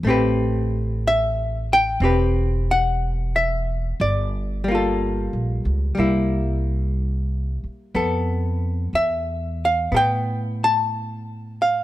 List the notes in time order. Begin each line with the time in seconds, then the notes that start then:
0.03 A1 A3 C4
0.08 G4 B4
1.08 E5
1.73 G5
2.00 E1 C4 G4
2.05 B4
2.71 F#5
3.36 E5
4.00 G1 D5
4.64 G3
4.68 A#3 F4
4.75 A4
5.33 A#1
5.65 C#2
5.95 C2 G3 A#3
6.00 E4
7.64 muted upright bass stroke
7.94 F2 B3 A4
8.93 E2 E5
9.65 F5
9.92 A2 B3 A4
9.97 G5
10.64 A5
11.62 F5